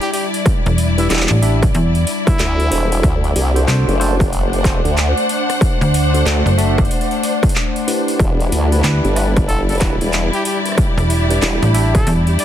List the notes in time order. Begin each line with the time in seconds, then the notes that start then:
Already playing: G3 D4 E4 D5
0.01 G4, open hi-hat
0.13 G4, open hi-hat
0.34 open hi-hat
0.45 F#5, kick, cross-stick, open hi-hat
0.66 E1, open hi-hat
0.78 open hi-hat
0.98 D4 E4 G4 B4, open hi-hat
1.10 E1 D4 E4 G4 D5, clap, open hi-hat
1.13 clap
1.17 clap
1.20 clap
1.27 A1, clap, open hi-hat
1.42 D4 E4 G4 E5, open hi-hat
1.63 kick, open hi-hat
1.75 E2, open hi-hat
1.95 open hi-hat
2.07 open hi-hat
2.27 E4, kick, open hi-hat
2.39 D2, clap, open hi-hat
2.60 open hi-hat
2.71 E1 D4 F#4 A4 C5, open hi-hat
2.92 open hi-hat
3.03 D2 A3 D4 C5, kick, open hi-hat
3.24 open hi-hat
3.36 C2, open hi-hat
3.55 D4 F#4 A4 C5, open hi-hat
3.67 C2 D4 F#4 A4 C5, clap, open hi-hat
3.88 F#1, open hi-hat
3.97 D4 F#4 A4 C5, cross-stick, open hi-hat
4.20 kick, open hi-hat
4.33 open hi-hat
4.37 F#5
4.53 F1, open hi-hat
4.64 D4 F#4 A4 C5, kick, clap, open hi-hat
4.84 D2, open hi-hat
4.98 clap, open hi-hat
5.18 open hi-hat
5.29 open hi-hat
5.50 cross-stick, open hi-hat
5.61 D5, kick, open hi-hat
5.81 D2, open hi-hat
5.94 open hi-hat
6.14 D4 F#4 A4 C5, open hi-hat
6.25 D2 D4 F#4 A4 D5, clap, open hi-hat
6.46 F#1, open hi-hat
6.58 D4 F#4 A4 E5, open hi-hat
6.78 kick, open hi-hat
6.85 open hi-hat
6.91 open hi-hat
7.01 open hi-hat
7.11 open hi-hat
7.23 open hi-hat
7.43 kick, open hi-hat
7.49 open hi-hat
7.55 clap
7.76 open hi-hat
7.87 D4 E4 G4 B4, open hi-hat
8.08 open hi-hat
8.19 E1 G3 E4 D5, kick, open hi-hat
8.40 open hi-hat
8.52 D2, open hi-hat
8.72 D4 E4 G4 B4, open hi-hat
8.80 D2 D5
8.84 D4 E4 G4 B4, clap, open hi-hat
9.04 G1, open hi-hat
9.16 D4 E4 G4 B4, cross-stick, open hi-hat
9.37 kick, open hi-hat
9.48 A4, open hi-hat
9.69 G4 A4, open hi-hat
9.72 open hi-hat
9.75 open hi-hat
9.78 clap, open hi-hat
9.81 D4 E4 G4 B4, kick, open hi-hat
10.01 E1, open hi-hat
10.13 clap, open hi-hat
10.33 G4, open hi-hat
10.45 G4, open hi-hat
10.66 cross-stick, open hi-hat
10.69 cross-stick
10.72 cross-stick
10.75 kick, cross-stick, open hi-hat
10.97 E1, open hi-hat
11.10 open hi-hat
11.30 D4 E4 G4 B4, open hi-hat
11.42 E1 D4 E4 G4 D5, clap, open hi-hat
11.62 A1, open hi-hat
11.74 D4 E4 G4 E5, open hi-hat
11.95 A4, kick, open hi-hat
12.07 E2, open hi-hat
12.27 open hi-hat
12.39 D5, open hi-hat